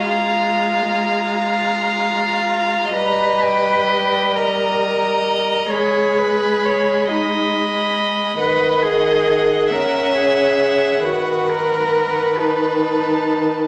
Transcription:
Already playing: G#3
0.02 F4 F5 A#5
1.38 F4 F5
2.93 G3 B4 D#5 A#5
3.43 G5
3.92 G5
4.34 A#4 D#5 A#5
5.71 G#3 G#4 C#5 B5
6.19 B4
6.65 C#5
7.10 D#4 D#5 B5
8.38 D#3 B4 D#5 F#5
8.83 G#4
9.70 C#4 A#4 E5
10.16 G#4
11.04 D#3 F#4 B4
11.49 A#4
12.39 D#4 A5

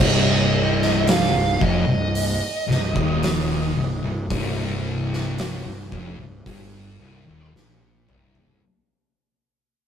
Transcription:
0.00 C1 C2 D#5, kick
0.82 snare
1.07 F5, snare, open hi-hat
1.34 C1 C2
1.61 F1 F2 D#5, kick
1.87 C1 C2
2.15 open hi-hat
2.67 C1 C2, snare
2.94 D#1 D#2, kick
3.23 snare, open hi-hat
3.76 C1 C2
4.03 C1 C2
4.30 C1 C2, kick, open hi-hat
5.13 snare
5.38 snare, open hi-hat
5.66 C1 C2
5.92 F1 F2, kick
6.19 C1 C2
6.46 G1 G2, kick, open hi-hat
7.00 C1 C2
7.26 D#1 D#2
7.54 A#1 A#2, snare
8.08 C1 C2, mid tom
8.35 floor tom

